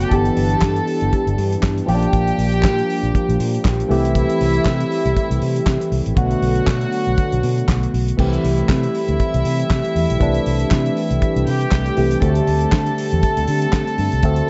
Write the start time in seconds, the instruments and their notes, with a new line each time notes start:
Already playing: tine electric piano D3 A3 B3 F#4, french horn section B3
0.01 string section G4 G5, closed hi-hat
0.10 fingered electric bass G1, tine electric piano E3 B3 D4 G4, french horn section E3 G3 D4 G4, string section A4 A5, kick, closed hi-hat
0.25 closed hi-hat
0.37 fingered electric bass G1, open hi-hat
0.50 closed hi-hat
0.62 fingered electric bass G2, kick, snare, clap
0.76 closed hi-hat
0.87 open hi-hat
1.01 fingered electric bass G1, closed hi-hat
1.13 kick, closed hi-hat
1.27 fingered electric bass G1, closed hi-hat
1.38 fingered electric bass G2, open hi-hat
1.52 closed hi-hat
1.63 fingered electric bass G2, kick, snare, clap
1.78 closed hi-hat
1.86 fingered electric bass A#1, tine electric piano F3 A#3 C#4 G4, french horn section F3 G3 A#3 D4 G4, string section G4 G5, open hi-hat
1.94 tine electric piano D4
2.02 closed hi-hat
2.13 fingered electric bass A#1, kick, closed hi-hat
2.27 closed hi-hat
2.38 fingered electric bass A#1, open hi-hat
2.52 closed hi-hat
2.63 fingered electric bass A#2, kick, snare, clap
2.78 closed hi-hat
2.90 open hi-hat
3.03 fingered electric bass A#1, closed hi-hat
3.15 kick, closed hi-hat
3.29 fingered electric bass A#1, closed hi-hat
3.40 fingered electric bass A#2, open hi-hat
3.55 closed hi-hat
3.65 fingered electric bass A#1, kick, snare, clap
3.80 closed hi-hat
3.88 fingered electric bass C2, tine electric piano E3 A3 C4 G4, french horn section E3 G3 A3 C4, string section E4 E5, open hi-hat
4.05 closed hi-hat
4.15 kick, closed hi-hat
4.29 closed hi-hat
4.41 fingered electric bass C2, open hi-hat
4.54 closed hi-hat
4.65 fingered electric bass C3, kick, snare, clap
4.80 closed hi-hat
4.92 open hi-hat
5.06 fingered electric bass C2, closed hi-hat
5.17 kick, closed hi-hat
5.31 fingered electric bass C2, closed hi-hat
5.42 fingered electric bass C3, open hi-hat
5.56 closed hi-hat
5.66 fingered electric bass C3, kick, snare, clap
5.81 closed hi-hat
5.92 fingered electric bass C2, open hi-hat
6.06 fingered electric bass A1, closed hi-hat
6.15 fingered electric bass B1, tine electric piano D3 A3 B3 F#4, french horn section D3 F#3 B3 F#4, string section F#4 F#5, kick, closed hi-hat
6.31 closed hi-hat
6.42 fingered electric bass B1, open hi-hat
6.55 closed hi-hat
6.67 fingered electric bass B2, kick, snare, clap
6.81 closed hi-hat
6.92 open hi-hat
7.06 fingered electric bass B1, closed hi-hat
7.18 kick, closed hi-hat
7.32 fingered electric bass B1, closed hi-hat
7.43 fingered electric bass B2, open hi-hat
7.58 closed hi-hat
7.68 fingered electric bass B1, kick, snare, clap
7.83 closed hi-hat
7.94 fingered electric bass B1, open hi-hat
8.08 closed hi-hat
8.17 fingered electric bass C2, tine electric piano E3 A3 C4 G4, french horn section E3 G3 A3 C4 G4, string section E4 E5, kick, crash
8.33 closed hi-hat
8.44 fingered electric bass C2, open hi-hat
8.58 closed hi-hat
8.69 fingered electric bass C3, kick, snare, clap
8.83 closed hi-hat
8.95 open hi-hat
9.08 fingered electric bass D2, closed hi-hat
9.20 kick, closed hi-hat
9.34 fingered electric bass C2, closed hi-hat
9.45 fingered electric bass C3, open hi-hat
9.60 closed hi-hat
9.70 fingered electric bass C3, kick, snare, clap
9.85 closed hi-hat
9.96 fingered electric bass E2, open hi-hat
10.10 fingered electric bass B1, closed hi-hat
10.19 fingered electric bass C2, tine electric piano E3 A3 C4 D4, french horn section B4, kick, closed hi-hat
10.34 closed hi-hat
10.46 fingered electric bass C2, open hi-hat
10.60 closed hi-hat
10.71 fingered electric bass C3, kick, snare, clap
10.86 closed hi-hat
10.97 open hi-hat
11.11 fingered electric bass C2, closed hi-hat
11.22 kick, closed hi-hat
11.36 fingered electric bass C2, closed hi-hat
11.47 fingered electric bass C3, string section G4 G5, open hi-hat
11.61 closed hi-hat
11.71 fingered electric bass C2, kick, snare, clap
11.86 closed hi-hat
11.97 fingered electric bass C2, tine electric piano E3 A3 C4 G4, open hi-hat
12.11 closed hi-hat
12.21 fingered electric bass D2, tine electric piano D3 A3 C4 F#4, french horn section D3 C4, string section A4 A5, kick, closed hi-hat
12.29 tine electric piano G4
12.35 closed hi-hat
12.47 fingered electric bass D2, open hi-hat
12.60 closed hi-hat
12.72 fingered electric bass D3, kick, snare, clap
12.86 closed hi-hat
12.98 open hi-hat
13.11 fingered electric bass E2, closed hi-hat
13.23 kick, closed hi-hat
13.37 fingered electric bass D2, closed hi-hat
13.47 fingered electric bass D3, open hi-hat
13.62 closed hi-hat
13.72 fingered electric bass D3, kick, snare, clap
13.87 closed hi-hat
13.98 fingered electric bass G2, open hi-hat
14.12 fingered electric bass C2, closed hi-hat
14.22 fingered electric bass D2, tine electric piano D3 A3 C4 A4, french horn section F#4, kick, closed hi-hat
14.36 closed hi-hat